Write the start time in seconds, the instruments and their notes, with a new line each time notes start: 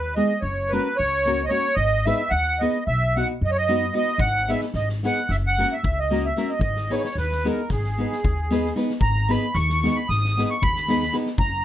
Already playing: upright bass D#2, accordion B4
0.15 nylon-string guitar G#3 B3 D#4 G#4, accordion D#5
0.41 upright bass F#1, accordion C#5
0.69 nylon-string guitar A#3 C#4 F#4, accordion B4
0.74 nylon-string guitar A#4
0.97 upright bass C#2, accordion C#5
1.25 nylon-string guitar A#3 C#4 F#4 A#4
1.44 accordion D#5
1.49 nylon-string guitar A#3 C#4 F#4 A#4, accordion C#5
1.75 upright bass G#1, accordion D#5
2.05 nylon-string guitar B3 D#4 G#4 B4, accordion E5
2.30 upright bass D#2, accordion F#5
2.59 nylon-string guitar B3 D#4 G#4 B4, accordion D#5
2.87 upright bass B1, accordion E5
3.16 nylon-string guitar B3 D#4 F#4 B4, accordion F#5
3.41 upright bass F#2, accordion D#5
3.51 accordion C#5
3.58 accordion D#5
3.68 nylon-string guitar B3 D#4 F#4 B4
3.94 nylon-string guitar B3 D#4 F#4 B4, accordion D#5
4.18 upright bass G#1, accordion F#5, kick
4.48 nylon-string guitar B3 D#4 G#4 B4, accordion E5, snare
4.61 snare
4.74 upright bass G#1, accordion D#5, snare
4.89 snare
5.03 nylon-string guitar B3 D#4 G#4 B4, accordion F#5, snare
5.29 upright bass F#1, accordion E5, snare
5.47 accordion F#5
5.58 nylon-string guitar A#3 C#4 F#4 A#4, snare
5.72 accordion E5
5.83 upright bass C#2, kick
5.99 accordion D#5
6.10 nylon-string guitar A#3 C#4 F#4 A#4, snare
6.25 accordion E5
6.36 nylon-string guitar A#3 C#4 F#4 A#4, snare
6.50 accordion D#5
6.59 upright bass G#1, accordion D#5, kick
6.76 snare
6.90 nylon-string guitar B3 D#4 G#4 B4, accordion C#5, snare
6.97 accordion C#5
7.04 accordion C#5, snare
7.15 upright bass D#2, accordion B4, snare
7.32 snare
7.45 nylon-string guitar B3 D#4 G#4 B4, accordion A#4, snare
7.70 upright bass G#1, accordion G#4, kick, snare
7.85 snare
7.98 nylon-string guitar B3 D#4 G#4 B4
8.12 snare
8.24 upright bass D#2, kick
8.50 nylon-string guitar B3 D#4 G#4 B4, snare
8.66 snare
8.76 nylon-string guitar B3 D#4 G#4 B4, snare
8.90 snare
9.01 upright bass G#1, accordion A#5, kick
9.29 nylon-string guitar B3 D#4 G#4 B4, accordion B5, snare
9.55 upright bass D#2, accordion C#6, snare
9.69 snare
9.83 nylon-string guitar B3 D#4 G#4 B4, snare
9.96 accordion B5
10.09 upright bass G#1, accordion D#6, snare
10.25 snare
10.37 nylon-string guitar B3 D#4 G#4 B4, snare
10.46 accordion D#6
10.51 accordion C#6
10.62 upright bass D#2, accordion B5, kick
10.76 snare
10.88 nylon-string guitar B3 D#4 G#4 B4, snare
11.03 snare
11.12 nylon-string guitar B3 D#4 G#4 B4, snare
11.26 snare
11.38 upright bass F#1, accordion A#5, kick